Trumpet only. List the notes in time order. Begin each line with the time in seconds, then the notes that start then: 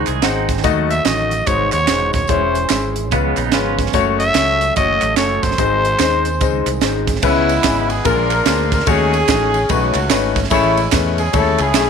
0.90 E5
1.05 D#5
1.47 C#5
1.73 C#5
2.14 C#5
2.29 C5
4.19 E5
4.76 D#5
5.18 C#5
5.43 C5